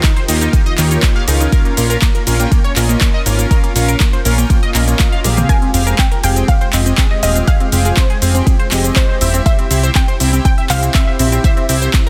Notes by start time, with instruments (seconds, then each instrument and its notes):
Already playing: analog synth pad D#3 D#4 F4 A#4 G5
0.03 synth arpeggio sound D#4, kick, clap, closed hi-hat, ride, shaker
0.16 synth arpeggio sound C5, closed hi-hat
0.28 analog synth bass D#2, analog polysynth A#3 F4 G4 D#5, synth arpeggio sound D#4, open hi-hat, ride, shaker
0.41 analog polysynth A#3 F4 G4 F5, synth arpeggio sound D#4, closed hi-hat, shaker
0.53 synth arpeggio sound D#4, kick, closed hi-hat, ride, shaker
0.66 synth arpeggio sound D#5, closed hi-hat
0.78 analog synth bass D#2, analog polysynth A#3 F4 G4 C#5, synth arpeggio sound D#4, clap, open hi-hat, ride, shaker
0.91 synth arpeggio sound D#4, closed hi-hat, shaker
1.03 synth arpeggio sound D#4, kick, clap, closed hi-hat, ride, shaker
1.16 synth arpeggio sound F5
1.28 analog synth bass C#2, analog polysynth C#4 F4 A#4 F5, synth arpeggio sound D#4, open hi-hat, ride, shaker
1.40 synth arpeggio sound D#4, closed hi-hat, shaker
1.52 analog synth pad A#3 C#4, synth arpeggio sound A#4, kick, closed hi-hat, ride, shaker
1.65 synth arpeggio sound A#3, closed hi-hat
1.77 analog synth bass A#1, synth arpeggio sound A#3, analog polysynth C#4 F4 A#4 F5, open hi-hat, ride, shaker
1.90 synth arpeggio sound A#4, closed hi-hat, shaker
2.02 synth arpeggio sound A#3, kick, clap, closed hi-hat, ride, shaker
2.15 synth arpeggio sound A#4, closed hi-hat
2.27 analog synth bass A#1, synth arpeggio sound A#3, analog polysynth C#4 F4 A#4 F5, open hi-hat, ride, shaker
2.40 synth arpeggio sound A#3, analog polysynth C#4 F4 A#4 G5, closed hi-hat, shaker
2.52 synth arpeggio sound A#3, kick, closed hi-hat, ride, shaker
2.64 synth arpeggio sound C#5, closed hi-hat
2.76 analog synth bass A#1, synth arpeggio sound A#3, analog polysynth C#4 F4 A#4 D#5, clap, open hi-hat, ride, shaker
2.89 synth arpeggio sound A#3, closed hi-hat, shaker
3.01 synth arpeggio sound A#3, kick, clap, closed hi-hat, ride, shaker
3.14 synth arpeggio sound D#5
3.26 analog synth bass G#1, synth arpeggio sound A#3, analog polysynth C#4 F4 A#4 F5, open hi-hat, ride, shaker
3.39 synth arpeggio sound A#3, closed hi-hat, shaker
3.51 synth arpeggio sound A#4, kick, closed hi-hat, ride, shaker
3.64 synth arpeggio sound A#3, closed hi-hat
3.76 analog synth bass A#1, synth arpeggio sound A#3, analog polysynth C#4 F4 A#4 F5, open hi-hat, ride, shaker
3.88 synth arpeggio sound A#4, closed hi-hat, shaker
4.00 synth arpeggio sound A#3, kick, clap, closed hi-hat, ride, shaker
4.13 synth arpeggio sound C5, closed hi-hat
4.25 analog synth bass A#1, synth arpeggio sound A#3, analog polysynth C#4 F4 A#4 F5, open hi-hat, ride, shaker
4.38 synth arpeggio sound A#3, analog polysynth C#4 F4 A#4 G5, closed hi-hat, shaker
4.50 synth arpeggio sound A#3, kick, closed hi-hat, ride, swell, shaker
4.63 synth arpeggio sound D#5, closed hi-hat
4.75 analog synth bass A#1, synth arpeggio sound A#3, analog polysynth C#4 F4 A#4 D#5, clap, open hi-hat, ride, shaker
4.88 synth arpeggio sound A#3, closed hi-hat, shaker
4.99 synth arpeggio sound A#3, kick, clap, closed hi-hat, ride, shaker
5.12 synth arpeggio sound F5, closed hi-hat
5.24 analog synth bass A#1, synth arpeggio sound A#3, analog polysynth C4 G4 G#4 F5, open hi-hat, high tom, ride, shaker
5.37 synth arpeggio sound A#3, closed hi-hat, mid tom, shaker
5.49 analog synth pad G#3 F4, synth arpeggio sound A#4, synth pluck G#5, kick, closed hi-hat, ride, shaker
5.62 synth arpeggio sound C4, closed hi-hat
5.74 analog synth bass F1, analog polysynth C4 G4 G#4 F5, synth arpeggio sound C4, open hi-hat, ride, shaker
5.87 synth arpeggio sound A#4, closed hi-hat, shaker
5.98 synth arpeggio sound C4, synth pluck G5, kick, clap, closed hi-hat, ride, shaker
6.12 synth arpeggio sound A#4, closed hi-hat
6.23 analog synth bass F1, analog polysynth C4 G4 G#4 F5, synth arpeggio sound C4, synth pluck G5, open hi-hat, ride, shaker
6.36 analog polysynth C4 G4 G#4 G5, synth arpeggio sound C4, closed hi-hat, shaker
6.48 synth arpeggio sound C4, synth pluck F5, kick, closed hi-hat, ride, shaker
6.61 synth arpeggio sound C5, closed hi-hat
6.73 analog synth bass F1, analog polysynth C4 G4 G#4 D#5, synth arpeggio sound C4, clap, open hi-hat, ride, shaker
6.86 synth arpeggio sound C4, closed hi-hat, shaker
6.98 synth arpeggio sound C4, kick, clap, closed hi-hat, ride, shaker
7.11 synth arpeggio sound D#5
7.23 analog synth bass D#1, analog polysynth C4 G4 G#4 F5, synth arpeggio sound C4, synth pluck D#5, open hi-hat, ride, shaker
7.36 synth arpeggio sound C4, closed hi-hat, shaker
7.47 synth arpeggio sound G#4, analog synth pad C5, synth pluck F5, kick, closed hi-hat, ride, shaker
7.60 synth arpeggio sound C4, closed hi-hat
7.72 analog synth bass F1, analog polysynth C4 G4 G#4 F5, synth arpeggio sound C4, open hi-hat, ride, shaker
7.85 synth arpeggio sound G#4, closed hi-hat, shaker
7.97 synth arpeggio sound C4, synth pluck C5, kick, clap, closed hi-hat, ride, shaker
8.10 synth arpeggio sound G#4, closed hi-hat
8.22 analog synth bass F1, analog polysynth C4 G4 G#4 F5, synth arpeggio sound C4, open hi-hat, ride, shaker
8.35 analog polysynth C4 G4 G#4 G5, synth arpeggio sound C4, closed hi-hat, shaker
8.47 synth arpeggio sound C4, kick, closed hi-hat, ride, shaker
8.59 synth arpeggio sound C5, closed hi-hat
8.71 analog synth bass F1, analog polysynth C4 G4 G#4 D#5, synth arpeggio sound C4, clap, open hi-hat, ride, shaker
8.84 synth arpeggio sound C4, closed hi-hat, shaker
8.96 synth arpeggio sound C4, synth pluck C5, kick, clap, closed hi-hat, ride, shaker
9.09 synth arpeggio sound C5
9.21 analog synth bass D#1, analog polysynth C4 E4 G4 E5, synth arpeggio sound C4, open hi-hat, ride, shaker
9.34 synth arpeggio sound C4, closed hi-hat, shaker
9.46 analog synth pad C4 E4 G4, synth arpeggio sound C5, synth pluck E5, kick, closed hi-hat, ride, shaker
9.59 synth arpeggio sound C4, closed hi-hat
9.71 analog synth bass C2, analog polysynth C4 E4 G4 E5, synth arpeggio sound C4, open hi-hat, ride, shaker
9.83 synth arpeggio sound C5, closed hi-hat, shaker
9.95 synth arpeggio sound C4, synth pluck G5, kick, clap, closed hi-hat, ride, shaker
10.08 synth arpeggio sound C5, closed hi-hat
10.20 analog synth bass C2, analog polysynth C4 E4 G4 E5, synth arpeggio sound C4, open hi-hat, ride, shaker
10.33 analog polysynth C4 E4 G4 G5, synth arpeggio sound C4, closed hi-hat, shaker
10.45 synth arpeggio sound C4, synth pluck G5, kick, closed hi-hat, ride, shaker
10.58 synth arpeggio sound E5, closed hi-hat
10.70 analog synth bass C2, analog polysynth C4 E4 G4 C5, synth arpeggio sound C4, synth pluck F5, clap, open hi-hat, ride, shaker
10.83 synth arpeggio sound C4, closed hi-hat, shaker
10.94 synth arpeggio sound C4, synth pluck E5, kick, clap, closed hi-hat, ride, shaker
11.07 synth arpeggio sound E5
11.19 analog synth bass A#1, analog polysynth C4 E4 G4 E5, synth arpeggio sound C4, open hi-hat, ride, shaker
11.32 synth arpeggio sound C4, closed hi-hat, shaker
11.44 synth arpeggio sound C5, synth pluck E5, kick, closed hi-hat, ride, shaker
11.57 synth arpeggio sound C4, closed hi-hat
11.69 analog synth bass C2, analog polysynth C4 E4 G4 E5, synth arpeggio sound C4, open hi-hat, ride, shaker
11.82 synth arpeggio sound C5, closed hi-hat, shaker
11.93 synth arpeggio sound C4, kick, clap, closed hi-hat, ride, shaker